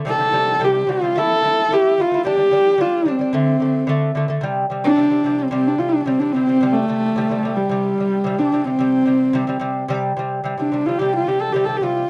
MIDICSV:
0, 0, Header, 1, 3, 480
1, 0, Start_track
1, 0, Tempo, 546946
1, 54, Time_signature, 4, 2, 24, 8
1, 10616, End_track
2, 0, Start_track
2, 0, Title_t, "Horsehead fiddle"
2, 0, Program_c, 0, 110
2, 75, Note_on_c, 0, 69, 117
2, 567, Note_on_c, 0, 67, 97
2, 580, Note_off_c, 0, 69, 0
2, 800, Note_on_c, 0, 65, 97
2, 813, Note_off_c, 0, 67, 0
2, 1043, Note_on_c, 0, 69, 114
2, 1056, Note_off_c, 0, 65, 0
2, 1522, Note_on_c, 0, 67, 97
2, 1535, Note_off_c, 0, 69, 0
2, 1764, Note_on_c, 0, 65, 100
2, 1778, Note_off_c, 0, 67, 0
2, 1987, Note_off_c, 0, 65, 0
2, 1995, Note_on_c, 0, 67, 110
2, 2472, Note_on_c, 0, 65, 92
2, 2485, Note_off_c, 0, 67, 0
2, 2714, Note_on_c, 0, 60, 86
2, 2727, Note_off_c, 0, 65, 0
2, 3660, Note_off_c, 0, 60, 0
2, 4252, Note_on_c, 0, 62, 96
2, 4728, Note_on_c, 0, 60, 87
2, 4741, Note_off_c, 0, 62, 0
2, 4834, Note_off_c, 0, 60, 0
2, 4839, Note_on_c, 0, 60, 91
2, 4980, Note_on_c, 0, 62, 83
2, 4994, Note_off_c, 0, 60, 0
2, 5080, Note_on_c, 0, 65, 81
2, 5093, Note_off_c, 0, 62, 0
2, 5173, Note_on_c, 0, 62, 86
2, 5186, Note_off_c, 0, 65, 0
2, 5278, Note_on_c, 0, 60, 88
2, 5291, Note_off_c, 0, 62, 0
2, 5436, Note_on_c, 0, 62, 86
2, 5449, Note_off_c, 0, 60, 0
2, 5551, Note_on_c, 0, 60, 104
2, 5565, Note_off_c, 0, 62, 0
2, 5909, Note_on_c, 0, 57, 102
2, 5922, Note_off_c, 0, 60, 0
2, 6638, Note_on_c, 0, 55, 87
2, 6651, Note_off_c, 0, 57, 0
2, 7361, Note_on_c, 0, 62, 82
2, 7374, Note_off_c, 0, 55, 0
2, 7589, Note_on_c, 0, 60, 92
2, 7602, Note_off_c, 0, 62, 0
2, 8635, Note_off_c, 0, 60, 0
2, 9298, Note_on_c, 0, 62, 77
2, 9533, Note_on_c, 0, 65, 89
2, 9546, Note_off_c, 0, 62, 0
2, 9641, Note_on_c, 0, 67, 89
2, 9654, Note_off_c, 0, 65, 0
2, 9786, Note_off_c, 0, 67, 0
2, 9791, Note_on_c, 0, 65, 86
2, 9902, Note_on_c, 0, 67, 87
2, 9915, Note_off_c, 0, 65, 0
2, 10012, Note_on_c, 0, 69, 88
2, 10025, Note_off_c, 0, 67, 0
2, 10116, Note_on_c, 0, 67, 80
2, 10129, Note_off_c, 0, 69, 0
2, 10225, Note_on_c, 0, 69, 88
2, 10238, Note_off_c, 0, 67, 0
2, 10329, Note_on_c, 0, 67, 80
2, 10342, Note_off_c, 0, 69, 0
2, 10389, Note_on_c, 0, 65, 81
2, 10402, Note_off_c, 0, 67, 0
2, 10616, Note_off_c, 0, 65, 0
2, 10616, End_track
3, 0, Start_track
3, 0, Title_t, "Lute"
3, 0, Program_c, 1, 24
3, 44, Note_on_c, 1, 48, 91
3, 58, Note_on_c, 1, 55, 97
3, 145, Note_off_c, 1, 48, 0
3, 152, Note_off_c, 1, 55, 0
3, 162, Note_on_c, 1, 48, 66
3, 176, Note_on_c, 1, 55, 73
3, 263, Note_off_c, 1, 48, 0
3, 271, Note_off_c, 1, 55, 0
3, 280, Note_on_c, 1, 48, 70
3, 295, Note_on_c, 1, 55, 79
3, 478, Note_off_c, 1, 48, 0
3, 486, Note_off_c, 1, 55, 0
3, 521, Note_on_c, 1, 48, 91
3, 533, Note_on_c, 1, 55, 104
3, 718, Note_off_c, 1, 48, 0
3, 724, Note_off_c, 1, 55, 0
3, 761, Note_on_c, 1, 48, 78
3, 778, Note_on_c, 1, 55, 85
3, 862, Note_off_c, 1, 48, 0
3, 871, Note_off_c, 1, 55, 0
3, 890, Note_on_c, 1, 48, 70
3, 911, Note_on_c, 1, 55, 73
3, 987, Note_off_c, 1, 48, 0
3, 997, Note_off_c, 1, 55, 0
3, 1014, Note_on_c, 1, 57, 91
3, 1031, Note_on_c, 1, 64, 100
3, 1204, Note_off_c, 1, 57, 0
3, 1213, Note_off_c, 1, 64, 0
3, 1249, Note_on_c, 1, 57, 68
3, 1272, Note_on_c, 1, 64, 77
3, 1442, Note_off_c, 1, 57, 0
3, 1453, Note_off_c, 1, 64, 0
3, 1496, Note_on_c, 1, 57, 87
3, 1512, Note_on_c, 1, 64, 93
3, 1685, Note_off_c, 1, 57, 0
3, 1693, Note_off_c, 1, 64, 0
3, 1736, Note_on_c, 1, 57, 70
3, 1753, Note_on_c, 1, 64, 80
3, 1829, Note_off_c, 1, 57, 0
3, 1837, Note_off_c, 1, 64, 0
3, 1855, Note_on_c, 1, 57, 69
3, 1879, Note_on_c, 1, 64, 71
3, 1948, Note_off_c, 1, 57, 0
3, 1960, Note_off_c, 1, 64, 0
3, 1973, Note_on_c, 1, 55, 88
3, 1988, Note_on_c, 1, 62, 97
3, 2067, Note_off_c, 1, 55, 0
3, 2074, Note_off_c, 1, 62, 0
3, 2085, Note_on_c, 1, 55, 63
3, 2095, Note_on_c, 1, 62, 71
3, 2183, Note_off_c, 1, 55, 0
3, 2188, Note_off_c, 1, 62, 0
3, 2206, Note_on_c, 1, 55, 69
3, 2218, Note_on_c, 1, 62, 81
3, 2399, Note_off_c, 1, 55, 0
3, 2405, Note_off_c, 1, 62, 0
3, 2439, Note_on_c, 1, 55, 86
3, 2464, Note_on_c, 1, 62, 105
3, 2636, Note_off_c, 1, 55, 0
3, 2648, Note_off_c, 1, 62, 0
3, 2682, Note_on_c, 1, 55, 75
3, 2704, Note_on_c, 1, 62, 82
3, 2781, Note_off_c, 1, 55, 0
3, 2792, Note_off_c, 1, 62, 0
3, 2798, Note_on_c, 1, 55, 64
3, 2818, Note_on_c, 1, 62, 74
3, 2899, Note_off_c, 1, 55, 0
3, 2909, Note_off_c, 1, 62, 0
3, 2921, Note_on_c, 1, 50, 90
3, 2931, Note_on_c, 1, 57, 99
3, 3116, Note_off_c, 1, 50, 0
3, 3121, Note_off_c, 1, 57, 0
3, 3158, Note_on_c, 1, 50, 62
3, 3175, Note_on_c, 1, 57, 69
3, 3355, Note_off_c, 1, 50, 0
3, 3363, Note_off_c, 1, 57, 0
3, 3396, Note_on_c, 1, 50, 98
3, 3415, Note_on_c, 1, 57, 111
3, 3594, Note_off_c, 1, 50, 0
3, 3603, Note_off_c, 1, 57, 0
3, 3642, Note_on_c, 1, 50, 85
3, 3659, Note_on_c, 1, 57, 87
3, 3741, Note_off_c, 1, 50, 0
3, 3749, Note_off_c, 1, 57, 0
3, 3757, Note_on_c, 1, 50, 72
3, 3771, Note_on_c, 1, 57, 80
3, 3858, Note_off_c, 1, 50, 0
3, 3865, Note_off_c, 1, 57, 0
3, 3870, Note_on_c, 1, 48, 95
3, 3891, Note_on_c, 1, 55, 99
3, 4071, Note_off_c, 1, 48, 0
3, 4081, Note_off_c, 1, 55, 0
3, 4123, Note_on_c, 1, 48, 65
3, 4137, Note_on_c, 1, 55, 78
3, 4318, Note_off_c, 1, 48, 0
3, 4324, Note_off_c, 1, 55, 0
3, 4352, Note_on_c, 1, 48, 81
3, 4371, Note_on_c, 1, 55, 86
3, 4456, Note_off_c, 1, 48, 0
3, 4465, Note_off_c, 1, 55, 0
3, 4475, Note_on_c, 1, 48, 60
3, 4488, Note_on_c, 1, 55, 64
3, 4577, Note_off_c, 1, 48, 0
3, 4584, Note_off_c, 1, 55, 0
3, 4599, Note_on_c, 1, 48, 70
3, 4617, Note_on_c, 1, 55, 77
3, 4795, Note_off_c, 1, 48, 0
3, 4804, Note_off_c, 1, 55, 0
3, 4835, Note_on_c, 1, 48, 91
3, 4847, Note_on_c, 1, 55, 96
3, 5033, Note_off_c, 1, 48, 0
3, 5040, Note_off_c, 1, 55, 0
3, 5075, Note_on_c, 1, 48, 61
3, 5089, Note_on_c, 1, 55, 68
3, 5274, Note_off_c, 1, 48, 0
3, 5281, Note_off_c, 1, 55, 0
3, 5316, Note_on_c, 1, 48, 81
3, 5330, Note_on_c, 1, 55, 95
3, 5418, Note_off_c, 1, 48, 0
3, 5425, Note_off_c, 1, 55, 0
3, 5440, Note_on_c, 1, 48, 59
3, 5453, Note_on_c, 1, 55, 64
3, 5540, Note_off_c, 1, 48, 0
3, 5547, Note_off_c, 1, 55, 0
3, 5567, Note_on_c, 1, 48, 71
3, 5584, Note_on_c, 1, 55, 74
3, 5664, Note_off_c, 1, 48, 0
3, 5672, Note_off_c, 1, 55, 0
3, 5680, Note_on_c, 1, 48, 59
3, 5696, Note_on_c, 1, 55, 67
3, 5780, Note_off_c, 1, 48, 0
3, 5788, Note_off_c, 1, 55, 0
3, 5799, Note_on_c, 1, 48, 83
3, 5816, Note_on_c, 1, 55, 94
3, 5996, Note_off_c, 1, 48, 0
3, 6005, Note_off_c, 1, 55, 0
3, 6040, Note_on_c, 1, 48, 69
3, 6051, Note_on_c, 1, 55, 77
3, 6237, Note_off_c, 1, 48, 0
3, 6242, Note_off_c, 1, 55, 0
3, 6283, Note_on_c, 1, 48, 85
3, 6299, Note_on_c, 1, 55, 95
3, 6382, Note_off_c, 1, 48, 0
3, 6390, Note_off_c, 1, 55, 0
3, 6402, Note_on_c, 1, 48, 66
3, 6418, Note_on_c, 1, 55, 72
3, 6502, Note_off_c, 1, 48, 0
3, 6510, Note_off_c, 1, 55, 0
3, 6519, Note_on_c, 1, 48, 71
3, 6539, Note_on_c, 1, 55, 80
3, 6717, Note_off_c, 1, 48, 0
3, 6727, Note_off_c, 1, 55, 0
3, 6753, Note_on_c, 1, 48, 88
3, 6770, Note_on_c, 1, 55, 92
3, 6954, Note_off_c, 1, 48, 0
3, 6962, Note_off_c, 1, 55, 0
3, 7001, Note_on_c, 1, 48, 58
3, 7024, Note_on_c, 1, 55, 68
3, 7198, Note_off_c, 1, 48, 0
3, 7210, Note_off_c, 1, 55, 0
3, 7233, Note_on_c, 1, 48, 88
3, 7253, Note_on_c, 1, 55, 89
3, 7338, Note_off_c, 1, 48, 0
3, 7348, Note_off_c, 1, 55, 0
3, 7357, Note_on_c, 1, 48, 60
3, 7376, Note_on_c, 1, 55, 63
3, 7460, Note_off_c, 1, 48, 0
3, 7470, Note_off_c, 1, 55, 0
3, 7480, Note_on_c, 1, 48, 73
3, 7493, Note_on_c, 1, 55, 78
3, 7582, Note_off_c, 1, 48, 0
3, 7588, Note_off_c, 1, 55, 0
3, 7594, Note_on_c, 1, 48, 64
3, 7610, Note_on_c, 1, 55, 69
3, 7699, Note_off_c, 1, 48, 0
3, 7707, Note_off_c, 1, 55, 0
3, 7712, Note_on_c, 1, 48, 83
3, 7727, Note_on_c, 1, 55, 95
3, 7914, Note_off_c, 1, 48, 0
3, 7921, Note_off_c, 1, 55, 0
3, 7947, Note_on_c, 1, 48, 68
3, 7959, Note_on_c, 1, 55, 76
3, 8152, Note_off_c, 1, 48, 0
3, 8158, Note_off_c, 1, 55, 0
3, 8191, Note_on_c, 1, 48, 103
3, 8205, Note_on_c, 1, 55, 114
3, 8298, Note_off_c, 1, 48, 0
3, 8305, Note_off_c, 1, 55, 0
3, 8312, Note_on_c, 1, 48, 80
3, 8327, Note_on_c, 1, 55, 86
3, 8411, Note_off_c, 1, 48, 0
3, 8421, Note_on_c, 1, 48, 87
3, 8423, Note_off_c, 1, 55, 0
3, 8433, Note_on_c, 1, 55, 93
3, 8629, Note_off_c, 1, 48, 0
3, 8635, Note_off_c, 1, 55, 0
3, 8675, Note_on_c, 1, 48, 105
3, 8690, Note_on_c, 1, 55, 110
3, 8876, Note_off_c, 1, 48, 0
3, 8884, Note_off_c, 1, 55, 0
3, 8922, Note_on_c, 1, 48, 81
3, 8943, Note_on_c, 1, 55, 83
3, 9120, Note_off_c, 1, 48, 0
3, 9130, Note_off_c, 1, 55, 0
3, 9160, Note_on_c, 1, 48, 82
3, 9174, Note_on_c, 1, 55, 92
3, 9263, Note_off_c, 1, 48, 0
3, 9270, Note_off_c, 1, 55, 0
3, 9281, Note_on_c, 1, 48, 62
3, 9298, Note_on_c, 1, 55, 65
3, 9383, Note_off_c, 1, 48, 0
3, 9392, Note_off_c, 1, 55, 0
3, 9407, Note_on_c, 1, 48, 70
3, 9421, Note_on_c, 1, 55, 76
3, 9506, Note_off_c, 1, 48, 0
3, 9513, Note_off_c, 1, 55, 0
3, 9531, Note_on_c, 1, 48, 65
3, 9554, Note_on_c, 1, 55, 72
3, 9628, Note_off_c, 1, 48, 0
3, 9640, Note_off_c, 1, 55, 0
3, 9647, Note_on_c, 1, 48, 85
3, 9667, Note_on_c, 1, 55, 90
3, 9843, Note_off_c, 1, 48, 0
3, 9852, Note_off_c, 1, 55, 0
3, 9890, Note_on_c, 1, 48, 66
3, 9906, Note_on_c, 1, 55, 77
3, 10084, Note_off_c, 1, 48, 0
3, 10092, Note_off_c, 1, 55, 0
3, 10128, Note_on_c, 1, 48, 85
3, 10143, Note_on_c, 1, 55, 96
3, 10227, Note_off_c, 1, 48, 0
3, 10235, Note_off_c, 1, 55, 0
3, 10240, Note_on_c, 1, 48, 67
3, 10262, Note_on_c, 1, 55, 72
3, 10343, Note_off_c, 1, 48, 0
3, 10354, Note_off_c, 1, 55, 0
3, 10364, Note_on_c, 1, 48, 69
3, 10381, Note_on_c, 1, 55, 79
3, 10561, Note_off_c, 1, 48, 0
3, 10570, Note_off_c, 1, 55, 0
3, 10616, End_track
0, 0, End_of_file